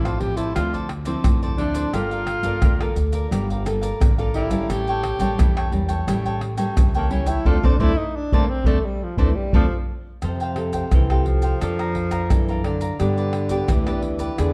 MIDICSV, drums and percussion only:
0, 0, Header, 1, 4, 480
1, 0, Start_track
1, 0, Key_signature, -1, "minor"
1, 0, Tempo, 691244
1, 1346, Time_signature, 4, 2, 24, 8
1, 7101, Key_signature, -1, "major"
1, 10091, End_track
2, 0, Start_track
2, 0, Title_t, "Pandeiro"
2, 36, Note_on_c, 9, 54, 35
2, 106, Note_off_c, 9, 54, 0
2, 142, Note_on_c, 9, 54, 50
2, 211, Note_off_c, 9, 54, 0
2, 258, Note_on_c, 9, 54, 68
2, 327, Note_off_c, 9, 54, 0
2, 387, Note_on_c, 9, 54, 81
2, 457, Note_off_c, 9, 54, 0
2, 514, Note_on_c, 9, 54, 35
2, 584, Note_off_c, 9, 54, 0
2, 619, Note_on_c, 9, 54, 56
2, 689, Note_off_c, 9, 54, 0
2, 732, Note_on_c, 9, 54, 70
2, 801, Note_off_c, 9, 54, 0
2, 863, Note_on_c, 9, 54, 87
2, 932, Note_off_c, 9, 54, 0
2, 990, Note_on_c, 9, 54, 34
2, 1059, Note_off_c, 9, 54, 0
2, 1099, Note_on_c, 9, 54, 57
2, 1168, Note_off_c, 9, 54, 0
2, 1213, Note_on_c, 9, 54, 72
2, 1282, Note_off_c, 9, 54, 0
2, 1344, Note_on_c, 9, 54, 70
2, 1413, Note_off_c, 9, 54, 0
2, 1466, Note_on_c, 9, 54, 35
2, 1535, Note_off_c, 9, 54, 0
2, 1574, Note_on_c, 9, 54, 61
2, 1644, Note_off_c, 9, 54, 0
2, 1689, Note_on_c, 9, 54, 62
2, 1759, Note_off_c, 9, 54, 0
2, 1818, Note_on_c, 9, 54, 86
2, 1887, Note_off_c, 9, 54, 0
2, 1948, Note_on_c, 9, 54, 36
2, 2018, Note_off_c, 9, 54, 0
2, 2058, Note_on_c, 9, 54, 52
2, 2127, Note_off_c, 9, 54, 0
2, 2171, Note_on_c, 9, 54, 65
2, 2240, Note_off_c, 9, 54, 0
2, 2307, Note_on_c, 9, 54, 87
2, 2376, Note_off_c, 9, 54, 0
2, 2432, Note_on_c, 9, 54, 35
2, 2501, Note_off_c, 9, 54, 0
2, 2542, Note_on_c, 9, 54, 58
2, 2612, Note_off_c, 9, 54, 0
2, 2657, Note_on_c, 9, 54, 68
2, 2727, Note_off_c, 9, 54, 0
2, 2787, Note_on_c, 9, 54, 89
2, 2856, Note_off_c, 9, 54, 0
2, 2906, Note_on_c, 9, 54, 35
2, 2976, Note_off_c, 9, 54, 0
2, 3015, Note_on_c, 9, 54, 58
2, 3084, Note_off_c, 9, 54, 0
2, 3129, Note_on_c, 9, 54, 78
2, 3199, Note_off_c, 9, 54, 0
2, 3262, Note_on_c, 9, 54, 72
2, 3332, Note_off_c, 9, 54, 0
2, 3385, Note_on_c, 9, 54, 34
2, 3454, Note_off_c, 9, 54, 0
2, 3496, Note_on_c, 9, 54, 60
2, 3566, Note_off_c, 9, 54, 0
2, 3608, Note_on_c, 9, 54, 70
2, 3678, Note_off_c, 9, 54, 0
2, 3743, Note_on_c, 9, 54, 87
2, 3813, Note_off_c, 9, 54, 0
2, 3867, Note_on_c, 9, 54, 36
2, 3936, Note_off_c, 9, 54, 0
2, 3974, Note_on_c, 9, 54, 51
2, 4044, Note_off_c, 9, 54, 0
2, 4089, Note_on_c, 9, 54, 65
2, 4158, Note_off_c, 9, 54, 0
2, 4221, Note_on_c, 9, 54, 86
2, 4291, Note_off_c, 9, 54, 0
2, 4344, Note_on_c, 9, 54, 36
2, 4414, Note_off_c, 9, 54, 0
2, 4453, Note_on_c, 9, 54, 55
2, 4522, Note_off_c, 9, 54, 0
2, 4566, Note_on_c, 9, 54, 71
2, 4636, Note_off_c, 9, 54, 0
2, 4700, Note_on_c, 9, 54, 91
2, 4770, Note_off_c, 9, 54, 0
2, 4822, Note_on_c, 9, 54, 35
2, 4891, Note_off_c, 9, 54, 0
2, 4934, Note_on_c, 9, 54, 57
2, 5004, Note_off_c, 9, 54, 0
2, 5045, Note_on_c, 9, 54, 78
2, 5114, Note_off_c, 9, 54, 0
2, 7097, Note_on_c, 9, 54, 69
2, 7167, Note_off_c, 9, 54, 0
2, 7222, Note_on_c, 9, 54, 36
2, 7291, Note_off_c, 9, 54, 0
2, 7332, Note_on_c, 9, 54, 57
2, 7402, Note_off_c, 9, 54, 0
2, 7450, Note_on_c, 9, 54, 69
2, 7519, Note_off_c, 9, 54, 0
2, 7579, Note_on_c, 9, 54, 73
2, 7649, Note_off_c, 9, 54, 0
2, 7708, Note_on_c, 9, 54, 33
2, 7777, Note_off_c, 9, 54, 0
2, 7817, Note_on_c, 9, 54, 51
2, 7886, Note_off_c, 9, 54, 0
2, 7930, Note_on_c, 9, 54, 56
2, 8000, Note_off_c, 9, 54, 0
2, 8065, Note_on_c, 9, 54, 80
2, 8134, Note_off_c, 9, 54, 0
2, 8188, Note_on_c, 9, 54, 31
2, 8258, Note_off_c, 9, 54, 0
2, 8296, Note_on_c, 9, 54, 51
2, 8366, Note_off_c, 9, 54, 0
2, 8411, Note_on_c, 9, 54, 64
2, 8480, Note_off_c, 9, 54, 0
2, 8543, Note_on_c, 9, 54, 81
2, 8612, Note_off_c, 9, 54, 0
2, 8669, Note_on_c, 9, 54, 29
2, 8739, Note_off_c, 9, 54, 0
2, 8779, Note_on_c, 9, 54, 59
2, 8849, Note_off_c, 9, 54, 0
2, 8894, Note_on_c, 9, 54, 67
2, 8964, Note_off_c, 9, 54, 0
2, 9024, Note_on_c, 9, 54, 68
2, 9094, Note_off_c, 9, 54, 0
2, 9148, Note_on_c, 9, 54, 34
2, 9217, Note_off_c, 9, 54, 0
2, 9255, Note_on_c, 9, 54, 58
2, 9324, Note_off_c, 9, 54, 0
2, 9369, Note_on_c, 9, 54, 60
2, 9439, Note_off_c, 9, 54, 0
2, 9502, Note_on_c, 9, 54, 81
2, 9571, Note_off_c, 9, 54, 0
2, 9628, Note_on_c, 9, 54, 36
2, 9698, Note_off_c, 9, 54, 0
2, 9738, Note_on_c, 9, 54, 53
2, 9807, Note_off_c, 9, 54, 0
2, 9853, Note_on_c, 9, 54, 59
2, 9923, Note_off_c, 9, 54, 0
2, 9988, Note_on_c, 9, 54, 80
2, 10057, Note_off_c, 9, 54, 0
2, 10091, End_track
3, 0, Start_track
3, 0, Title_t, "Tamborim"
3, 36, Note_on_c, 9, 60, 86
3, 106, Note_off_c, 9, 60, 0
3, 387, Note_on_c, 9, 60, 80
3, 457, Note_off_c, 9, 60, 0
3, 619, Note_on_c, 9, 60, 77
3, 689, Note_off_c, 9, 60, 0
3, 863, Note_on_c, 9, 60, 91
3, 932, Note_off_c, 9, 60, 0
3, 1344, Note_on_c, 9, 60, 72
3, 1413, Note_off_c, 9, 60, 0
3, 1574, Note_on_c, 9, 60, 81
3, 1644, Note_off_c, 9, 60, 0
3, 1818, Note_on_c, 9, 60, 82
3, 1887, Note_off_c, 9, 60, 0
3, 1948, Note_on_c, 9, 60, 84
3, 2018, Note_off_c, 9, 60, 0
3, 2307, Note_on_c, 9, 60, 77
3, 2376, Note_off_c, 9, 60, 0
3, 2542, Note_on_c, 9, 60, 80
3, 2612, Note_off_c, 9, 60, 0
3, 2787, Note_on_c, 9, 60, 89
3, 2856, Note_off_c, 9, 60, 0
3, 3262, Note_on_c, 9, 60, 74
3, 3332, Note_off_c, 9, 60, 0
3, 3496, Note_on_c, 9, 60, 85
3, 3566, Note_off_c, 9, 60, 0
3, 3743, Note_on_c, 9, 60, 84
3, 3813, Note_off_c, 9, 60, 0
3, 3867, Note_on_c, 9, 60, 90
3, 3936, Note_off_c, 9, 60, 0
3, 4221, Note_on_c, 9, 60, 85
3, 4291, Note_off_c, 9, 60, 0
3, 4453, Note_on_c, 9, 60, 71
3, 4522, Note_off_c, 9, 60, 0
3, 4700, Note_on_c, 9, 60, 86
3, 4770, Note_off_c, 9, 60, 0
3, 7097, Note_on_c, 9, 60, 70
3, 7167, Note_off_c, 9, 60, 0
3, 7332, Note_on_c, 9, 60, 72
3, 7402, Note_off_c, 9, 60, 0
3, 7579, Note_on_c, 9, 60, 80
3, 7649, Note_off_c, 9, 60, 0
3, 7708, Note_on_c, 9, 60, 80
3, 7777, Note_off_c, 9, 60, 0
3, 8065, Note_on_c, 9, 60, 80
3, 8134, Note_off_c, 9, 60, 0
3, 8188, Note_on_c, 9, 60, 77
3, 8258, Note_off_c, 9, 60, 0
3, 8411, Note_on_c, 9, 60, 81
3, 8480, Note_off_c, 9, 60, 0
3, 8543, Note_on_c, 9, 60, 86
3, 8612, Note_off_c, 9, 60, 0
3, 8779, Note_on_c, 9, 60, 73
3, 8849, Note_off_c, 9, 60, 0
3, 9024, Note_on_c, 9, 60, 70
3, 9094, Note_off_c, 9, 60, 0
3, 9255, Note_on_c, 9, 60, 82
3, 9324, Note_off_c, 9, 60, 0
3, 9502, Note_on_c, 9, 60, 81
3, 9571, Note_off_c, 9, 60, 0
3, 9628, Note_on_c, 9, 60, 81
3, 9698, Note_off_c, 9, 60, 0
3, 9988, Note_on_c, 9, 60, 80
3, 10057, Note_off_c, 9, 60, 0
3, 10091, End_track
4, 0, Start_track
4, 0, Title_t, "Drums"
4, 36, Note_on_c, 9, 82, 37
4, 106, Note_off_c, 9, 82, 0
4, 258, Note_on_c, 9, 82, 79
4, 258, Note_on_c, 9, 87, 31
4, 327, Note_off_c, 9, 82, 0
4, 327, Note_off_c, 9, 87, 0
4, 387, Note_on_c, 9, 82, 87
4, 387, Note_on_c, 9, 87, 58
4, 457, Note_off_c, 9, 82, 0
4, 457, Note_off_c, 9, 87, 0
4, 514, Note_on_c, 9, 82, 35
4, 514, Note_on_c, 9, 87, 33
4, 584, Note_off_c, 9, 82, 0
4, 584, Note_off_c, 9, 87, 0
4, 732, Note_on_c, 9, 82, 87
4, 801, Note_off_c, 9, 82, 0
4, 863, Note_on_c, 9, 82, 90
4, 863, Note_on_c, 9, 87, 107
4, 932, Note_off_c, 9, 82, 0
4, 932, Note_off_c, 9, 87, 0
4, 990, Note_on_c, 9, 82, 34
4, 1059, Note_off_c, 9, 82, 0
4, 1213, Note_on_c, 9, 82, 88
4, 1213, Note_on_c, 9, 87, 36
4, 1282, Note_off_c, 9, 82, 0
4, 1282, Note_off_c, 9, 87, 0
4, 1344, Note_on_c, 9, 82, 73
4, 1344, Note_on_c, 9, 87, 54
4, 1413, Note_off_c, 9, 82, 0
4, 1413, Note_off_c, 9, 87, 0
4, 1466, Note_on_c, 9, 82, 37
4, 1535, Note_off_c, 9, 82, 0
4, 1689, Note_on_c, 9, 82, 77
4, 1689, Note_on_c, 9, 87, 36
4, 1759, Note_off_c, 9, 82, 0
4, 1759, Note_off_c, 9, 87, 0
4, 1818, Note_on_c, 9, 82, 81
4, 1818, Note_on_c, 9, 87, 102
4, 1887, Note_off_c, 9, 82, 0
4, 1887, Note_off_c, 9, 87, 0
4, 1948, Note_on_c, 9, 82, 37
4, 2018, Note_off_c, 9, 82, 0
4, 2058, Note_on_c, 9, 82, 62
4, 2127, Note_off_c, 9, 82, 0
4, 2171, Note_on_c, 9, 82, 82
4, 2171, Note_on_c, 9, 87, 32
4, 2240, Note_off_c, 9, 82, 0
4, 2240, Note_off_c, 9, 87, 0
4, 2307, Note_on_c, 9, 82, 81
4, 2307, Note_on_c, 9, 87, 61
4, 2376, Note_off_c, 9, 82, 0
4, 2376, Note_off_c, 9, 87, 0
4, 2432, Note_on_c, 9, 82, 34
4, 2432, Note_on_c, 9, 87, 35
4, 2501, Note_off_c, 9, 82, 0
4, 2501, Note_off_c, 9, 87, 0
4, 2542, Note_on_c, 9, 82, 67
4, 2612, Note_off_c, 9, 82, 0
4, 2657, Note_on_c, 9, 82, 85
4, 2727, Note_off_c, 9, 82, 0
4, 2787, Note_on_c, 9, 82, 91
4, 2787, Note_on_c, 9, 87, 115
4, 2856, Note_off_c, 9, 82, 0
4, 2856, Note_off_c, 9, 87, 0
4, 2906, Note_on_c, 9, 82, 32
4, 2976, Note_off_c, 9, 82, 0
4, 3129, Note_on_c, 9, 82, 87
4, 3129, Note_on_c, 9, 87, 36
4, 3199, Note_off_c, 9, 82, 0
4, 3199, Note_off_c, 9, 87, 0
4, 3262, Note_on_c, 9, 82, 73
4, 3262, Note_on_c, 9, 87, 53
4, 3332, Note_off_c, 9, 82, 0
4, 3332, Note_off_c, 9, 87, 0
4, 3385, Note_on_c, 9, 82, 35
4, 3454, Note_off_c, 9, 82, 0
4, 3496, Note_on_c, 9, 87, 32
4, 3566, Note_off_c, 9, 87, 0
4, 3608, Note_on_c, 9, 82, 84
4, 3608, Note_on_c, 9, 87, 37
4, 3678, Note_off_c, 9, 82, 0
4, 3678, Note_off_c, 9, 87, 0
4, 3743, Note_on_c, 9, 82, 91
4, 3743, Note_on_c, 9, 87, 111
4, 3813, Note_off_c, 9, 82, 0
4, 3813, Note_off_c, 9, 87, 0
4, 3867, Note_on_c, 9, 82, 36
4, 3936, Note_off_c, 9, 82, 0
4, 4089, Note_on_c, 9, 82, 76
4, 4089, Note_on_c, 9, 87, 31
4, 4158, Note_off_c, 9, 82, 0
4, 4158, Note_off_c, 9, 87, 0
4, 4221, Note_on_c, 9, 82, 83
4, 4221, Note_on_c, 9, 87, 60
4, 4291, Note_off_c, 9, 82, 0
4, 4291, Note_off_c, 9, 87, 0
4, 4344, Note_on_c, 9, 82, 35
4, 4344, Note_on_c, 9, 87, 32
4, 4414, Note_off_c, 9, 82, 0
4, 4414, Note_off_c, 9, 87, 0
4, 4566, Note_on_c, 9, 82, 80
4, 4636, Note_off_c, 9, 82, 0
4, 4700, Note_on_c, 9, 82, 94
4, 4700, Note_on_c, 9, 87, 110
4, 4770, Note_off_c, 9, 82, 0
4, 4770, Note_off_c, 9, 87, 0
4, 4822, Note_on_c, 9, 82, 35
4, 4891, Note_off_c, 9, 82, 0
4, 5045, Note_on_c, 9, 82, 84
4, 5045, Note_on_c, 9, 87, 35
4, 5114, Note_off_c, 9, 82, 0
4, 5114, Note_off_c, 9, 87, 0
4, 5175, Note_on_c, 9, 87, 84
4, 5244, Note_off_c, 9, 87, 0
4, 5303, Note_on_c, 9, 87, 103
4, 5373, Note_off_c, 9, 87, 0
4, 5410, Note_on_c, 9, 87, 103
4, 5480, Note_off_c, 9, 87, 0
4, 5779, Note_on_c, 9, 87, 102
4, 5849, Note_off_c, 9, 87, 0
4, 6001, Note_on_c, 9, 87, 94
4, 6070, Note_off_c, 9, 87, 0
4, 6370, Note_on_c, 9, 87, 95
4, 6439, Note_off_c, 9, 87, 0
4, 6617, Note_on_c, 9, 87, 110
4, 6687, Note_off_c, 9, 87, 0
4, 7097, Note_on_c, 9, 82, 72
4, 7097, Note_on_c, 9, 87, 52
4, 7167, Note_off_c, 9, 82, 0
4, 7167, Note_off_c, 9, 87, 0
4, 7222, Note_on_c, 9, 82, 32
4, 7291, Note_off_c, 9, 82, 0
4, 7450, Note_on_c, 9, 82, 82
4, 7450, Note_on_c, 9, 87, 34
4, 7519, Note_off_c, 9, 82, 0
4, 7519, Note_off_c, 9, 87, 0
4, 7579, Note_on_c, 9, 82, 81
4, 7579, Note_on_c, 9, 87, 106
4, 7649, Note_off_c, 9, 82, 0
4, 7649, Note_off_c, 9, 87, 0
4, 7708, Note_on_c, 9, 82, 33
4, 7777, Note_off_c, 9, 82, 0
4, 7930, Note_on_c, 9, 82, 70
4, 7930, Note_on_c, 9, 87, 32
4, 8000, Note_off_c, 9, 82, 0
4, 8000, Note_off_c, 9, 87, 0
4, 8065, Note_on_c, 9, 82, 74
4, 8065, Note_on_c, 9, 87, 56
4, 8134, Note_off_c, 9, 82, 0
4, 8134, Note_off_c, 9, 87, 0
4, 8188, Note_on_c, 9, 82, 31
4, 8258, Note_off_c, 9, 82, 0
4, 8296, Note_on_c, 9, 87, 28
4, 8366, Note_off_c, 9, 87, 0
4, 8411, Note_on_c, 9, 82, 81
4, 8411, Note_on_c, 9, 87, 34
4, 8480, Note_off_c, 9, 82, 0
4, 8480, Note_off_c, 9, 87, 0
4, 8543, Note_on_c, 9, 82, 85
4, 8543, Note_on_c, 9, 87, 106
4, 8612, Note_off_c, 9, 82, 0
4, 8612, Note_off_c, 9, 87, 0
4, 8669, Note_on_c, 9, 82, 33
4, 8739, Note_off_c, 9, 82, 0
4, 8894, Note_on_c, 9, 82, 77
4, 8894, Note_on_c, 9, 87, 35
4, 8964, Note_off_c, 9, 82, 0
4, 8964, Note_off_c, 9, 87, 0
4, 9024, Note_on_c, 9, 82, 73
4, 9024, Note_on_c, 9, 87, 52
4, 9094, Note_off_c, 9, 82, 0
4, 9094, Note_off_c, 9, 87, 0
4, 9148, Note_on_c, 9, 82, 34
4, 9217, Note_off_c, 9, 82, 0
4, 9369, Note_on_c, 9, 82, 73
4, 9369, Note_on_c, 9, 87, 31
4, 9439, Note_off_c, 9, 82, 0
4, 9439, Note_off_c, 9, 87, 0
4, 9502, Note_on_c, 9, 82, 83
4, 9502, Note_on_c, 9, 87, 93
4, 9571, Note_off_c, 9, 82, 0
4, 9571, Note_off_c, 9, 87, 0
4, 9628, Note_on_c, 9, 82, 34
4, 9698, Note_off_c, 9, 82, 0
4, 9853, Note_on_c, 9, 82, 73
4, 9853, Note_on_c, 9, 87, 30
4, 9923, Note_off_c, 9, 82, 0
4, 9923, Note_off_c, 9, 87, 0
4, 9988, Note_on_c, 9, 82, 81
4, 9988, Note_on_c, 9, 87, 60
4, 10057, Note_off_c, 9, 82, 0
4, 10057, Note_off_c, 9, 87, 0
4, 10091, End_track
0, 0, End_of_file